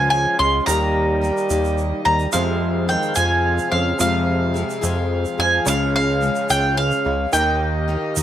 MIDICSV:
0, 0, Header, 1, 8, 480
1, 0, Start_track
1, 0, Key_signature, -4, "minor"
1, 0, Tempo, 554529
1, 581, Time_signature, 6, 3, 24, 8
1, 7121, End_track
2, 0, Start_track
2, 0, Title_t, "Mandolin"
2, 0, Program_c, 0, 25
2, 89, Note_on_c, 0, 80, 104
2, 335, Note_off_c, 0, 80, 0
2, 339, Note_on_c, 0, 84, 97
2, 563, Note_off_c, 0, 84, 0
2, 573, Note_on_c, 0, 82, 104
2, 1766, Note_off_c, 0, 82, 0
2, 1776, Note_on_c, 0, 82, 91
2, 2002, Note_off_c, 0, 82, 0
2, 2015, Note_on_c, 0, 77, 83
2, 2496, Note_off_c, 0, 77, 0
2, 2500, Note_on_c, 0, 79, 86
2, 2728, Note_off_c, 0, 79, 0
2, 2732, Note_on_c, 0, 80, 92
2, 3213, Note_off_c, 0, 80, 0
2, 3217, Note_on_c, 0, 77, 78
2, 3442, Note_off_c, 0, 77, 0
2, 3467, Note_on_c, 0, 77, 76
2, 4390, Note_off_c, 0, 77, 0
2, 4671, Note_on_c, 0, 80, 102
2, 4913, Note_off_c, 0, 80, 0
2, 4917, Note_on_c, 0, 77, 99
2, 5146, Note_off_c, 0, 77, 0
2, 5156, Note_on_c, 0, 77, 93
2, 5596, Note_off_c, 0, 77, 0
2, 5629, Note_on_c, 0, 79, 104
2, 5860, Note_off_c, 0, 79, 0
2, 5863, Note_on_c, 0, 77, 98
2, 6341, Note_off_c, 0, 77, 0
2, 6345, Note_on_c, 0, 79, 87
2, 7121, Note_off_c, 0, 79, 0
2, 7121, End_track
3, 0, Start_track
3, 0, Title_t, "Brass ensemble"
3, 0, Program_c, 1, 61
3, 0, Note_on_c, 1, 61, 81
3, 0, Note_on_c, 1, 68, 72
3, 0, Note_on_c, 1, 77, 84
3, 547, Note_off_c, 1, 68, 0
3, 548, Note_off_c, 1, 77, 0
3, 560, Note_off_c, 1, 61, 0
3, 584, Note_on_c, 1, 58, 78
3, 590, Note_on_c, 1, 67, 74
3, 590, Note_on_c, 1, 75, 86
3, 2009, Note_off_c, 1, 58, 0
3, 2012, Note_off_c, 1, 67, 0
3, 2012, Note_off_c, 1, 75, 0
3, 2022, Note_on_c, 1, 60, 76
3, 2022, Note_on_c, 1, 68, 70
3, 2023, Note_on_c, 1, 77, 91
3, 4873, Note_off_c, 1, 60, 0
3, 4874, Note_off_c, 1, 77, 0
3, 4900, Note_on_c, 1, 77, 96
3, 4905, Note_on_c, 1, 61, 82
3, 6308, Note_off_c, 1, 68, 0
3, 6327, Note_off_c, 1, 77, 0
3, 6330, Note_off_c, 1, 61, 0
3, 6346, Note_on_c, 1, 75, 88
3, 6349, Note_on_c, 1, 58, 78
3, 6350, Note_on_c, 1, 67, 75
3, 7121, Note_off_c, 1, 58, 0
3, 7121, Note_off_c, 1, 67, 0
3, 7121, Note_off_c, 1, 75, 0
3, 7121, End_track
4, 0, Start_track
4, 0, Title_t, "Steel-string acoustic guitar"
4, 0, Program_c, 2, 25
4, 0, Note_on_c, 2, 49, 54
4, 0, Note_on_c, 2, 53, 60
4, 0, Note_on_c, 2, 56, 61
4, 0, Note_on_c, 2, 61, 65
4, 0, Note_on_c, 2, 65, 70
4, 325, Note_off_c, 2, 65, 0
4, 336, Note_on_c, 2, 65, 55
4, 340, Note_off_c, 2, 61, 0
4, 344, Note_off_c, 2, 56, 0
4, 345, Note_off_c, 2, 53, 0
4, 346, Note_off_c, 2, 49, 0
4, 350, Note_on_c, 2, 61, 46
4, 354, Note_on_c, 2, 56, 40
4, 575, Note_on_c, 2, 51, 84
4, 578, Note_off_c, 2, 56, 0
4, 578, Note_off_c, 2, 65, 0
4, 581, Note_on_c, 2, 58, 79
4, 585, Note_off_c, 2, 61, 0
4, 588, Note_on_c, 2, 63, 79
4, 592, Note_on_c, 2, 67, 97
4, 1041, Note_off_c, 2, 51, 0
4, 1050, Note_off_c, 2, 58, 0
4, 1051, Note_on_c, 2, 51, 60
4, 1059, Note_off_c, 2, 63, 0
4, 1060, Note_on_c, 2, 58, 62
4, 1064, Note_off_c, 2, 67, 0
4, 1069, Note_on_c, 2, 63, 64
4, 1074, Note_on_c, 2, 67, 63
4, 1285, Note_off_c, 2, 67, 0
4, 1289, Note_off_c, 2, 63, 0
4, 1295, Note_on_c, 2, 67, 73
4, 1296, Note_off_c, 2, 51, 0
4, 1296, Note_off_c, 2, 58, 0
4, 1299, Note_on_c, 2, 63, 70
4, 1306, Note_on_c, 2, 58, 69
4, 1312, Note_on_c, 2, 51, 61
4, 1760, Note_off_c, 2, 67, 0
4, 1769, Note_off_c, 2, 63, 0
4, 1770, Note_on_c, 2, 67, 49
4, 1780, Note_off_c, 2, 58, 0
4, 1780, Note_on_c, 2, 63, 48
4, 1787, Note_off_c, 2, 51, 0
4, 1791, Note_on_c, 2, 58, 44
4, 2013, Note_on_c, 2, 41, 80
4, 2016, Note_off_c, 2, 67, 0
4, 2018, Note_on_c, 2, 48, 87
4, 2020, Note_off_c, 2, 58, 0
4, 2021, Note_off_c, 2, 63, 0
4, 2023, Note_on_c, 2, 53, 87
4, 2023, Note_on_c, 2, 56, 78
4, 2025, Note_on_c, 2, 60, 94
4, 2029, Note_on_c, 2, 68, 86
4, 2488, Note_off_c, 2, 53, 0
4, 2491, Note_on_c, 2, 53, 55
4, 2497, Note_off_c, 2, 41, 0
4, 2497, Note_off_c, 2, 56, 0
4, 2498, Note_off_c, 2, 60, 0
4, 2500, Note_off_c, 2, 48, 0
4, 2501, Note_on_c, 2, 56, 60
4, 2509, Note_on_c, 2, 60, 63
4, 2510, Note_off_c, 2, 68, 0
4, 2513, Note_on_c, 2, 68, 70
4, 2725, Note_off_c, 2, 68, 0
4, 2728, Note_off_c, 2, 56, 0
4, 2728, Note_off_c, 2, 60, 0
4, 2731, Note_off_c, 2, 53, 0
4, 2735, Note_on_c, 2, 68, 65
4, 2738, Note_on_c, 2, 60, 63
4, 2739, Note_on_c, 2, 56, 65
4, 2741, Note_on_c, 2, 53, 64
4, 2745, Note_on_c, 2, 48, 56
4, 2748, Note_on_c, 2, 41, 53
4, 3207, Note_off_c, 2, 68, 0
4, 3211, Note_off_c, 2, 60, 0
4, 3211, Note_on_c, 2, 68, 50
4, 3222, Note_on_c, 2, 60, 52
4, 3223, Note_off_c, 2, 48, 0
4, 3224, Note_off_c, 2, 56, 0
4, 3225, Note_off_c, 2, 41, 0
4, 3227, Note_on_c, 2, 56, 48
4, 3230, Note_off_c, 2, 53, 0
4, 3234, Note_on_c, 2, 53, 38
4, 3449, Note_off_c, 2, 53, 0
4, 3453, Note_off_c, 2, 56, 0
4, 3453, Note_off_c, 2, 60, 0
4, 3454, Note_on_c, 2, 41, 85
4, 3456, Note_off_c, 2, 68, 0
4, 3456, Note_on_c, 2, 48, 79
4, 3459, Note_on_c, 2, 53, 84
4, 3463, Note_on_c, 2, 60, 79
4, 3464, Note_on_c, 2, 56, 87
4, 3467, Note_on_c, 2, 68, 87
4, 3925, Note_off_c, 2, 53, 0
4, 3929, Note_on_c, 2, 53, 64
4, 3930, Note_off_c, 2, 56, 0
4, 3933, Note_on_c, 2, 56, 60
4, 3935, Note_off_c, 2, 60, 0
4, 3938, Note_off_c, 2, 41, 0
4, 3939, Note_off_c, 2, 48, 0
4, 3946, Note_on_c, 2, 60, 68
4, 3947, Note_off_c, 2, 68, 0
4, 3951, Note_on_c, 2, 68, 74
4, 4156, Note_off_c, 2, 68, 0
4, 4158, Note_off_c, 2, 56, 0
4, 4159, Note_off_c, 2, 60, 0
4, 4163, Note_off_c, 2, 53, 0
4, 4166, Note_on_c, 2, 68, 83
4, 4169, Note_on_c, 2, 56, 63
4, 4170, Note_on_c, 2, 60, 76
4, 4174, Note_on_c, 2, 53, 68
4, 4176, Note_on_c, 2, 48, 69
4, 4179, Note_on_c, 2, 41, 64
4, 4643, Note_off_c, 2, 68, 0
4, 4650, Note_off_c, 2, 60, 0
4, 4654, Note_on_c, 2, 68, 50
4, 4655, Note_off_c, 2, 56, 0
4, 4658, Note_off_c, 2, 53, 0
4, 4659, Note_off_c, 2, 48, 0
4, 4660, Note_off_c, 2, 41, 0
4, 4661, Note_on_c, 2, 60, 47
4, 4669, Note_on_c, 2, 56, 42
4, 4675, Note_on_c, 2, 53, 41
4, 4883, Note_off_c, 2, 53, 0
4, 4887, Note_off_c, 2, 56, 0
4, 4890, Note_on_c, 2, 49, 86
4, 4894, Note_on_c, 2, 53, 80
4, 4895, Note_off_c, 2, 68, 0
4, 4897, Note_on_c, 2, 56, 82
4, 4898, Note_off_c, 2, 60, 0
4, 4901, Note_on_c, 2, 61, 91
4, 4906, Note_on_c, 2, 68, 87
4, 5362, Note_off_c, 2, 53, 0
4, 5369, Note_off_c, 2, 56, 0
4, 5372, Note_on_c, 2, 53, 62
4, 5375, Note_off_c, 2, 61, 0
4, 5376, Note_off_c, 2, 49, 0
4, 5380, Note_on_c, 2, 56, 62
4, 5381, Note_off_c, 2, 68, 0
4, 5385, Note_on_c, 2, 61, 65
4, 5392, Note_on_c, 2, 68, 76
4, 5611, Note_off_c, 2, 68, 0
4, 5616, Note_off_c, 2, 61, 0
4, 5617, Note_off_c, 2, 53, 0
4, 5618, Note_off_c, 2, 56, 0
4, 5622, Note_on_c, 2, 68, 74
4, 5627, Note_on_c, 2, 61, 65
4, 5629, Note_on_c, 2, 56, 63
4, 5632, Note_on_c, 2, 53, 60
4, 5636, Note_on_c, 2, 49, 58
4, 6089, Note_off_c, 2, 68, 0
4, 6099, Note_on_c, 2, 68, 57
4, 6101, Note_off_c, 2, 61, 0
4, 6105, Note_off_c, 2, 56, 0
4, 6107, Note_off_c, 2, 53, 0
4, 6109, Note_off_c, 2, 49, 0
4, 6111, Note_on_c, 2, 61, 47
4, 6117, Note_on_c, 2, 56, 48
4, 6341, Note_off_c, 2, 68, 0
4, 6344, Note_on_c, 2, 51, 84
4, 6347, Note_off_c, 2, 56, 0
4, 6347, Note_off_c, 2, 61, 0
4, 6350, Note_on_c, 2, 58, 86
4, 6353, Note_on_c, 2, 63, 84
4, 6358, Note_on_c, 2, 67, 87
4, 6809, Note_off_c, 2, 51, 0
4, 6815, Note_off_c, 2, 58, 0
4, 6819, Note_off_c, 2, 63, 0
4, 6819, Note_on_c, 2, 51, 66
4, 6826, Note_on_c, 2, 58, 58
4, 6829, Note_on_c, 2, 63, 70
4, 6830, Note_off_c, 2, 67, 0
4, 6839, Note_on_c, 2, 67, 69
4, 7048, Note_off_c, 2, 67, 0
4, 7055, Note_off_c, 2, 63, 0
4, 7058, Note_on_c, 2, 67, 69
4, 7059, Note_off_c, 2, 58, 0
4, 7061, Note_off_c, 2, 51, 0
4, 7066, Note_on_c, 2, 63, 73
4, 7069, Note_on_c, 2, 58, 68
4, 7072, Note_on_c, 2, 51, 63
4, 7121, Note_off_c, 2, 51, 0
4, 7121, Note_off_c, 2, 58, 0
4, 7121, Note_off_c, 2, 63, 0
4, 7121, Note_off_c, 2, 67, 0
4, 7121, End_track
5, 0, Start_track
5, 0, Title_t, "Upright piano"
5, 0, Program_c, 3, 0
5, 0, Control_c, 3, 64, 127
5, 0, Note_on_c, 3, 37, 79
5, 0, Note_on_c, 3, 49, 77
5, 0, Note_on_c, 3, 56, 84
5, 0, Note_on_c, 3, 61, 76
5, 0, Note_on_c, 3, 65, 77
5, 0, Note_on_c, 3, 73, 84
5, 544, Note_off_c, 3, 49, 0
5, 545, Note_off_c, 3, 37, 0
5, 548, Note_off_c, 3, 56, 0
5, 549, Note_off_c, 3, 61, 0
5, 550, Note_off_c, 3, 73, 0
5, 551, Note_off_c, 3, 65, 0
5, 582, Note_on_c, 3, 55, 69
5, 582, Note_on_c, 3, 58, 59
5, 586, Note_on_c, 3, 51, 62
5, 587, Note_on_c, 3, 39, 63
5, 589, Note_on_c, 3, 63, 60
5, 590, Control_c, 3, 64, 0
5, 592, Note_on_c, 3, 70, 74
5, 730, Control_c, 3, 64, 127
5, 1989, Note_off_c, 3, 51, 0
5, 1990, Note_off_c, 3, 39, 0
5, 1993, Note_off_c, 3, 55, 0
5, 1993, Note_off_c, 3, 58, 0
5, 1997, Note_off_c, 3, 63, 0
5, 1998, Note_off_c, 3, 70, 0
5, 2009, Note_on_c, 3, 56, 64
5, 2013, Note_on_c, 3, 41, 63
5, 2015, Note_on_c, 3, 29, 62
5, 2015, Note_on_c, 3, 60, 60
5, 2015, Note_on_c, 3, 65, 57
5, 2022, Note_on_c, 3, 72, 76
5, 2034, Control_c, 3, 64, 0
5, 2194, Control_c, 3, 64, 127
5, 3423, Note_off_c, 3, 41, 0
5, 3424, Note_off_c, 3, 29, 0
5, 3448, Note_on_c, 3, 29, 65
5, 3449, Note_on_c, 3, 41, 63
5, 4860, Note_off_c, 3, 29, 0
5, 4861, Note_off_c, 3, 41, 0
5, 4861, Note_off_c, 3, 56, 0
5, 4864, Note_off_c, 3, 60, 0
5, 4864, Note_off_c, 3, 65, 0
5, 4867, Note_off_c, 3, 72, 0
5, 4895, Note_on_c, 3, 56, 65
5, 4898, Note_on_c, 3, 49, 60
5, 4899, Note_on_c, 3, 37, 65
5, 4901, Note_on_c, 3, 61, 60
5, 4901, Note_on_c, 3, 73, 75
5, 4904, Note_on_c, 3, 65, 59
5, 4913, Control_c, 3, 64, 0
5, 5072, Control_c, 3, 64, 127
5, 6306, Note_off_c, 3, 37, 0
5, 6306, Note_off_c, 3, 49, 0
5, 6310, Note_off_c, 3, 56, 0
5, 6313, Note_off_c, 3, 61, 0
5, 6313, Note_off_c, 3, 73, 0
5, 6315, Note_off_c, 3, 65, 0
5, 6341, Note_on_c, 3, 39, 60
5, 6341, Note_on_c, 3, 51, 65
5, 6341, Note_on_c, 3, 58, 67
5, 6342, Note_on_c, 3, 63, 60
5, 6344, Note_on_c, 3, 67, 59
5, 6348, Note_on_c, 3, 75, 73
5, 6353, Control_c, 3, 64, 0
5, 6494, Control_c, 3, 64, 127
5, 7121, Note_off_c, 3, 39, 0
5, 7121, Note_off_c, 3, 51, 0
5, 7121, Note_off_c, 3, 58, 0
5, 7121, Note_off_c, 3, 63, 0
5, 7121, Note_off_c, 3, 67, 0
5, 7121, Note_off_c, 3, 75, 0
5, 7121, End_track
6, 0, Start_track
6, 0, Title_t, "French horn"
6, 0, Program_c, 4, 60
6, 109, Note_on_c, 4, 53, 79
6, 328, Note_off_c, 4, 53, 0
6, 345, Note_on_c, 4, 56, 91
6, 567, Note_off_c, 4, 56, 0
6, 577, Note_on_c, 4, 55, 93
6, 1745, Note_off_c, 4, 55, 0
6, 1773, Note_on_c, 4, 55, 81
6, 2000, Note_off_c, 4, 55, 0
6, 2021, Note_on_c, 4, 48, 75
6, 2467, Note_off_c, 4, 48, 0
6, 2487, Note_on_c, 4, 51, 72
6, 2717, Note_off_c, 4, 51, 0
6, 2739, Note_on_c, 4, 53, 75
6, 3187, Note_off_c, 4, 53, 0
6, 3221, Note_on_c, 4, 49, 73
6, 3444, Note_off_c, 4, 49, 0
6, 3466, Note_on_c, 4, 48, 68
6, 4389, Note_off_c, 4, 48, 0
6, 4682, Note_on_c, 4, 53, 92
6, 4896, Note_off_c, 4, 53, 0
6, 4922, Note_on_c, 4, 49, 81
6, 5136, Note_off_c, 4, 49, 0
6, 5159, Note_on_c, 4, 49, 81
6, 5597, Note_off_c, 4, 49, 0
6, 5639, Note_on_c, 4, 49, 85
6, 5854, Note_off_c, 4, 49, 0
6, 5867, Note_on_c, 4, 49, 84
6, 6311, Note_off_c, 4, 49, 0
6, 6354, Note_on_c, 4, 51, 78
6, 7121, Note_off_c, 4, 51, 0
6, 7121, End_track
7, 0, Start_track
7, 0, Title_t, "Analog synth bass"
7, 0, Program_c, 5, 38
7, 0, Note_on_c, 5, 37, 93
7, 231, Note_off_c, 5, 37, 0
7, 342, Note_on_c, 5, 37, 90
7, 526, Note_off_c, 5, 37, 0
7, 584, Note_on_c, 5, 39, 94
7, 1136, Note_off_c, 5, 39, 0
7, 1303, Note_on_c, 5, 39, 95
7, 1671, Note_off_c, 5, 39, 0
7, 1783, Note_on_c, 5, 39, 100
7, 1966, Note_off_c, 5, 39, 0
7, 2025, Note_on_c, 5, 41, 95
7, 2576, Note_off_c, 5, 41, 0
7, 2743, Note_on_c, 5, 41, 97
7, 3111, Note_off_c, 5, 41, 0
7, 3221, Note_on_c, 5, 41, 98
7, 3405, Note_off_c, 5, 41, 0
7, 3464, Note_on_c, 5, 41, 97
7, 4016, Note_off_c, 5, 41, 0
7, 4184, Note_on_c, 5, 41, 100
7, 4551, Note_off_c, 5, 41, 0
7, 4664, Note_on_c, 5, 41, 89
7, 4848, Note_off_c, 5, 41, 0
7, 4905, Note_on_c, 5, 37, 99
7, 5457, Note_off_c, 5, 37, 0
7, 5627, Note_on_c, 5, 37, 101
7, 5994, Note_off_c, 5, 37, 0
7, 6109, Note_on_c, 5, 37, 99
7, 6290, Note_off_c, 5, 37, 0
7, 6348, Note_on_c, 5, 39, 94
7, 6899, Note_off_c, 5, 39, 0
7, 7071, Note_on_c, 5, 39, 97
7, 7121, Note_off_c, 5, 39, 0
7, 7121, End_track
8, 0, Start_track
8, 0, Title_t, "Drums"
8, 589, Note_on_c, 9, 82, 88
8, 676, Note_off_c, 9, 82, 0
8, 1070, Note_on_c, 9, 82, 25
8, 1156, Note_off_c, 9, 82, 0
8, 1189, Note_on_c, 9, 82, 26
8, 1275, Note_off_c, 9, 82, 0
8, 1299, Note_on_c, 9, 82, 83
8, 1385, Note_off_c, 9, 82, 0
8, 1426, Note_on_c, 9, 82, 26
8, 1512, Note_off_c, 9, 82, 0
8, 1541, Note_on_c, 9, 82, 27
8, 1627, Note_off_c, 9, 82, 0
8, 1900, Note_on_c, 9, 82, 25
8, 1986, Note_off_c, 9, 82, 0
8, 2013, Note_on_c, 9, 82, 82
8, 2100, Note_off_c, 9, 82, 0
8, 2504, Note_on_c, 9, 82, 28
8, 2590, Note_off_c, 9, 82, 0
8, 2620, Note_on_c, 9, 82, 25
8, 2706, Note_off_c, 9, 82, 0
8, 2730, Note_on_c, 9, 82, 85
8, 2817, Note_off_c, 9, 82, 0
8, 3102, Note_on_c, 9, 82, 27
8, 3188, Note_off_c, 9, 82, 0
8, 3459, Note_on_c, 9, 82, 89
8, 3545, Note_off_c, 9, 82, 0
8, 3942, Note_on_c, 9, 82, 29
8, 4029, Note_off_c, 9, 82, 0
8, 4067, Note_on_c, 9, 82, 28
8, 4154, Note_off_c, 9, 82, 0
8, 4184, Note_on_c, 9, 82, 89
8, 4270, Note_off_c, 9, 82, 0
8, 4548, Note_on_c, 9, 82, 33
8, 4635, Note_off_c, 9, 82, 0
8, 4905, Note_on_c, 9, 82, 105
8, 4992, Note_off_c, 9, 82, 0
8, 5386, Note_on_c, 9, 82, 29
8, 5473, Note_off_c, 9, 82, 0
8, 5499, Note_on_c, 9, 82, 28
8, 5585, Note_off_c, 9, 82, 0
8, 5625, Note_on_c, 9, 82, 94
8, 5712, Note_off_c, 9, 82, 0
8, 5983, Note_on_c, 9, 82, 29
8, 6069, Note_off_c, 9, 82, 0
8, 6345, Note_on_c, 9, 82, 86
8, 6432, Note_off_c, 9, 82, 0
8, 7065, Note_on_c, 9, 82, 89
8, 7121, Note_off_c, 9, 82, 0
8, 7121, End_track
0, 0, End_of_file